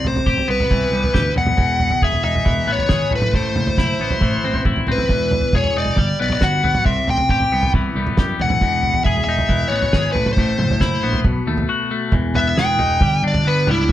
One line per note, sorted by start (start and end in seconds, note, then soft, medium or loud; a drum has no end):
0.00 0.92 C3 medium
0.04 0.19 A1 medium
0.04 0.47 C5 medium
0.04 floor tom medium
0.16 floor tom medium
0.26 0.41 A1 medium
0.26 1.13 G4 medium
0.26 kick medium
0.38 floor tom medium
0.48 0.63 C2 medium
0.48 2.24 B3 medium
0.48 1.33 B4 medium
0.60 floor tom medium
0.71 0.85 C2 medium
0.71 2.27 E3 medium
0.71 kick loud
0.71 floor tom medium
0.92 1.07 C2 medium
0.92 1.37 G3 medium
1.04 floor tom medium
1.14 1.29 D2 medium
1.14 1.36 G4 medium
1.14 kick loud
1.14 snare medium
1.14 mid tom medium
1.36 1.51 E1 medium
1.36 1.56 E2 medium
1.36 2.04 F#5 medium
1.36 floor tom medium
1.47 floor tom medium
1.47 mid tom medium
1.57 1.88 E1 medium
1.57 2.68 E2 medium
1.57 kick loud
1.57 floor tom medium
1.80 floor tom medium
1.90 floor tom medium
2.02 2.17 E1 medium
2.02 2.88 G#4 medium
2.02 2.23 E5 medium
2.02 kick medium
2.13 floor tom medium
2.24 2.39 E1 medium
2.24 3.12 D#4 medium
2.24 2.69 E5 medium
2.35 floor tom medium
2.45 2.61 E1 medium
2.45 4.21 E3 medium
2.45 kick loud
2.45 floor tom medium
2.67 2.82 A1 medium
2.67 3.14 B3 medium
2.72 3.11 C#5 medium
2.78 floor tom medium
2.89 3.04 G#1 medium
2.89 3.12 G#4 medium
2.89 kick loud
2.89 snare medium
2.89 mid tom medium
3.11 3.26 A1 medium
3.11 3.34 A2 medium
3.11 floor tom medium
3.15 3.35 B4 medium
3.22 floor tom medium
3.22 mid tom medium
3.33 3.49 A1 medium
3.33 4.45 A2 medium
3.33 4.63 C5 medium
3.33 kick medium
3.33 floor tom medium
3.56 3.71 F#1 medium
3.56 mid tom medium
3.67 floor tom medium
3.77 3.92 F#1 medium
3.77 4.65 E4 medium
3.77 kick medium
3.77 snare medium
4.00 4.15 A1 medium
4.00 5.76 B3 medium
4.10 floor tom medium
4.21 4.36 A1 medium
4.21 5.10 E3 medium
4.21 kick loud
4.21 floor tom medium
4.44 4.59 A1 medium
4.44 4.87 C4 medium
4.53 floor tom medium
4.65 4.80 A1 medium
4.65 5.10 E4 medium
4.65 kick loud
4.65 mid tom medium
4.76 floor tom medium
4.87 5.03 A1 medium
4.87 5.10 C4 medium
4.87 floor tom medium
4.92 5.56 B4 medium
4.98 floor tom medium
4.98 mid tom medium
5.09 5.39 E1 medium
5.09 5.98 E2 medium
5.09 kick loud
5.09 floor tom medium
5.31 floor tom medium
5.41 floor tom medium
5.53 5.68 E1 medium
5.53 5.98 G#4 medium
5.53 5.78 C#5 medium
5.53 kick medium
5.64 floor tom medium
5.76 5.90 E1 medium
5.76 5.98 D#4 medium
5.76 6.18 D5 medium
5.86 floor tom medium
5.96 6.12 G1 medium
5.96 6.85 G3 medium
5.96 kick loud
5.96 floor tom medium
6.20 6.35 B1 medium
6.20 6.63 B3 medium
6.20 6.32 D5 medium
6.30 6.43 D5 medium
6.30 floor tom medium
6.41 6.71 G1 medium
6.41 6.86 F#4 medium
6.41 6.85 F#5 medium
6.41 kick medium
6.41 snare medium
6.41 mid tom medium
6.63 6.88 B3 medium
6.63 floor tom medium
6.75 floor tom medium
6.75 mid tom medium
6.85 7.00 C2 medium
6.85 7.95 C3 medium
6.85 7.08 E5 medium
6.85 kick loud
6.85 floor tom medium
7.07 7.23 A1 medium
7.07 7.29 G5 medium
7.07 floor tom medium
7.18 floor tom medium
7.29 7.44 A1 medium
7.29 8.18 G4 medium
7.29 7.71 G5 medium
7.29 kick medium
7.40 floor tom medium
7.52 7.67 C2 medium
7.52 9.28 B3 medium
7.63 floor tom medium
7.74 7.89 C2 medium
7.74 9.32 E3 medium
7.74 kick loud
7.74 floor tom medium
7.95 8.10 C2 medium
7.95 8.40 G3 medium
8.07 floor tom medium
8.17 8.32 F#2 medium
8.17 8.40 G4 medium
8.17 kick loud
8.17 snare medium
8.17 mid tom medium
8.39 8.54 E1 medium
8.39 8.61 E2 medium
8.39 9.04 F#5 medium
8.39 floor tom medium
8.50 floor tom medium
8.50 mid tom medium
8.61 8.91 E1 medium
8.61 9.72 E2 medium
8.61 kick medium
8.61 floor tom medium
8.83 floor tom medium
8.94 floor tom medium
9.04 9.20 E1 medium
9.04 9.92 G#4 medium
9.04 9.23 E5 medium
9.04 kick medium
9.16 floor tom medium
9.24 9.42 E1 medium
9.24 9.67 E5 medium
9.29 10.16 D#4 medium
9.38 floor tom medium
9.49 9.64 E1 medium
9.49 10.15 E3 medium
9.49 kick loud
9.49 floor tom medium
9.68 9.85 A1 medium
9.68 10.18 B3 medium
9.68 10.11 C#5 medium
9.82 floor tom medium
9.93 10.08 G#1 medium
9.93 10.15 G#4 medium
9.93 kick loud
9.93 snare medium
9.93 mid tom medium
10.12 10.29 A1 medium
10.12 10.37 A2 medium
10.12 10.32 B4 medium
10.12 floor tom medium
10.26 floor tom medium
10.26 mid tom medium
10.33 10.52 A1 medium
10.33 11.19 C5 medium
10.37 11.24 A2 medium
10.37 kick loud
10.37 floor tom medium
10.58 10.73 F#1 medium
10.58 mid tom medium
10.70 floor tom medium
10.80 10.95 F#1 medium
10.80 11.25 E4 medium
10.80 kick medium
10.80 snare medium
11.03 11.18 A#1 medium
11.03 11.25 B3 medium
11.13 floor tom medium
11.24 11.39 B1 medium
11.24 12.13 B2 medium
11.24 kick loud
11.24 floor tom medium
11.47 11.62 D#2 medium
11.47 11.90 A3 medium
11.57 floor tom medium
11.69 12.13 F#4 medium
11.91 12.13 A3 medium
12.12 12.54 E1 medium
12.12 13.01 E2 medium
12.12 kick loud
12.12 floor tom medium
12.35 13.47 B3 medium
12.35 12.57 E5 medium
12.35 floor tom medium
12.57 12.77 E1 medium
12.57 13.02 G#4 medium
12.57 13.23 G5 medium
12.57 snare medium
12.78 12.99 E1 medium
12.78 13.01 D#4 medium
12.78 floor tom medium
13.01 13.22 G1 medium
13.01 13.67 G3 medium
13.01 kick loud
13.01 floor tom medium
13.22 13.44 G1 medium
13.22 13.90 D4 medium
13.28 13.47 D5 medium
13.34 floor tom medium
13.44 13.65 G1 medium
13.44 13.92 B3 medium
13.44 13.68 B4 medium
13.67 13.88 C#2 medium
13.67 13.90 G3 medium
13.67 13.91 E4 medium
13.67 floor tom medium
13.67 mid tom medium
13.89 floor tom medium